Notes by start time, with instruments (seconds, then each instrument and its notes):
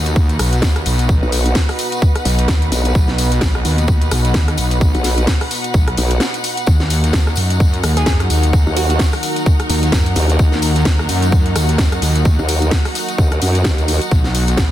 Already playing: wobble bass D#2, analog synth pad B3 B4 D#5 F#5, string section D#4 F#4 B4 F#5
0.06 closed hi-hat, tambourine
0.16 kick, tambourine
0.29 closed hi-hat, tambourine
0.39 wobble bass B1, cross-stick, open hi-hat, tambourine
0.53 closed hi-hat, tambourine
0.62 wobble bass D#2, kick, snare, tambourine
0.76 cross-stick, closed hi-hat, tambourine
0.86 wobble bass B1, open hi-hat, tambourine
0.98 closed hi-hat, tambourine
1.09 kick, tambourine
1.22 wobble bass B1, tambourine
1.32 open hi-hat, tambourine
1.45 closed hi-hat, tambourine
1.55 kick, snare, tambourine
1.69 cross-stick, open hi-hat, tambourine
1.79 open hi-hat, tambourine
1.92 closed hi-hat, tambourine
2.02 kick, tambourine
2.15 cross-stick, closed hi-hat, tambourine
2.25 wobble bass B1, open hi-hat, tambourine
2.38 closed hi-hat, tambourine
2.48 wobble bass D#2, kick, snare, tambourine
2.62 closed hi-hat, tambourine
2.72 wobble bass B1, open hi-hat, tambourine
2.85 closed hi-hat, tambourine
2.95 wobble bass B1, kick, tambourine
3.08 snare, tambourine
3.18 open hi-hat, tambourine
3.32 closed hi-hat, tambourine
3.41 wobble bass B1, kick, snare, tambourine
3.55 cross-stick, tambourine
3.65 wobble bass D#2, open hi-hat, tambourine
3.78 closed hi-hat, tambourine
3.88 kick, tambourine
4.01 closed hi-hat, tambourine
4.11 wobble bass B1, cross-stick, open hi-hat, tambourine
4.25 closed hi-hat, tambourine
4.34 wobble bass D#2, kick, snare, tambourine
4.48 cross-stick, closed hi-hat, tambourine
4.58 wobble bass B1, open hi-hat, tambourine
4.71 closed hi-hat, tambourine
4.81 kick, tambourine
4.95 wobble bass B1, closed hi-hat, tambourine
5.04 snare, open hi-hat, tambourine
5.17 closed hi-hat, tambourine
5.27 kick, snare, tambourine
5.40 cross-stick, open hi-hat, tambourine
5.51 open hi-hat, tambourine
5.64 closed hi-hat, tambourine
5.74 wobble bass B1, kick, tambourine
5.88 cross-stick, closed hi-hat, tambourine
5.97 wobble bass B1, open hi-hat, tambourine
6.11 closed hi-hat, tambourine
6.20 snare, tambourine
6.34 closed hi-hat, tambourine
6.44 open hi-hat, tambourine
6.57 closed hi-hat, tambourine
6.66 wobble bass D#2, analog synth pad D#4 F#4 A#4, string section D#4, kick, tambourine
6.80 snare, tambourine
6.85 string section F#4
6.90 string section A#4, open hi-hat, tambourine
7.04 closed hi-hat, tambourine
7.13 wobble bass D#2, kick, snare, tambourine
7.27 cross-stick, tambourine
7.36 wobble bass F#2, open hi-hat, tambourine
7.50 closed hi-hat, tambourine
7.60 kick, tambourine
7.73 closed hi-hat, tambourine
7.83 wobble bass D#2, cross-stick, open hi-hat, tambourine
7.96 synth pluck G#4, closed hi-hat, tambourine
8.06 wobble bass F#2, synth pluck G#4, kick, snare, tambourine
8.20 cross-stick, closed hi-hat, tambourine
8.30 wobble bass D#2, open hi-hat, tambourine
8.43 closed hi-hat, tambourine
8.53 kick, tambourine
8.67 wobble bass D#2, tambourine
8.77 synth pluck F#4, open hi-hat, tambourine
8.90 synth pluck F#4, closed hi-hat, tambourine
8.99 kick, snare, tambourine
9.13 cross-stick, open hi-hat, tambourine
9.23 open hi-hat, tambourine
9.36 closed hi-hat, tambourine
9.46 kick, tambourine
9.60 cross-stick, closed hi-hat, tambourine
9.70 wobble bass D#2, open hi-hat, tambourine
9.83 closed hi-hat, tambourine
9.92 wobble bass F#2, kick, snare, tambourine
10.06 closed hi-hat, tambourine
10.16 wobble bass D#2, open hi-hat, tambourine
10.29 closed hi-hat, tambourine
10.39 wobble bass D#2, kick, tambourine
10.52 snare, tambourine
10.62 open hi-hat, tambourine
10.75 closed hi-hat, tambourine
10.85 wobble bass D#2, kick, snare, tambourine
10.99 cross-stick, tambourine
11.09 wobble bass F#2, open hi-hat, tambourine
11.22 closed hi-hat, tambourine
11.32 kick, tambourine
11.46 closed hi-hat, tambourine
11.56 wobble bass D#2, cross-stick, open hi-hat, tambourine
11.69 closed hi-hat, tambourine
11.78 wobble bass F#2, kick, snare, tambourine
11.92 cross-stick, closed hi-hat, tambourine
12.02 wobble bass D#2, open hi-hat, tambourine
12.15 closed hi-hat, tambourine
12.25 kick, tambourine
12.39 wobble bass D#2, tambourine
12.48 open hi-hat, tambourine
12.62 closed hi-hat, tambourine
12.71 kick, snare, tambourine
12.85 cross-stick, open hi-hat, tambourine
12.95 open hi-hat, tambourine
13.09 closed hi-hat, tambourine
13.18 wobble bass D#2, kick, tambourine
13.32 cross-stick, closed hi-hat, tambourine
13.42 wobble bass F#2, open hi-hat, tambourine
13.55 closed hi-hat, tambourine
13.64 wobble bass D#2, kick, snare, tambourine
13.78 closed hi-hat, tambourine
13.88 open hi-hat, tambourine
14.02 closed hi-hat, tambourine
14.11 wobble bass B1, analog synth pad B3 B4 D#5 F#5, kick, tambourine
14.24 snare, tambourine
14.35 open hi-hat, tambourine
14.47 closed hi-hat, tambourine
14.57 wobble bass B1, kick, snare, tambourine
14.62 string section B4